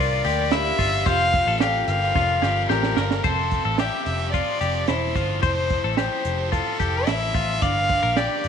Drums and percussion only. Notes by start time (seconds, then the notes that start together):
0.24 hi-hat pedal, open hi-hat
0.51 snare, hi-hat pedal, open hi-hat
0.79 kick, hi-hat pedal, open hi-hat
1.06 kick, hi-hat pedal, open hi-hat
1.33 kick, hi-hat pedal, open hi-hat
1.60 snare, hi-hat pedal, open hi-hat
1.88 hi-hat pedal, open hi-hat
2.15 kick, snare
2.42 snare
2.70 snare
2.83 snare
2.97 snare
3.11 snare
3.24 kick, closed hi-hat
3.51 kick, closed hi-hat
3.78 snare, closed hi-hat
4.06 snare, closed hi-hat
4.34 kick, closed hi-hat
4.61 closed hi-hat
4.87 snare, closed hi-hat
5.15 kick, closed hi-hat
5.43 kick, closed hi-hat
5.70 kick, closed hi-hat
5.97 snare, closed hi-hat
6.25 closed hi-hat
6.53 kick, closed hi-hat
6.80 kick, closed hi-hat
7.07 snare, closed hi-hat
7.35 kick, closed hi-hat
7.62 kick, closed hi-hat
7.89 kick, closed hi-hat
8.17 snare, closed hi-hat
8.44 closed hi-hat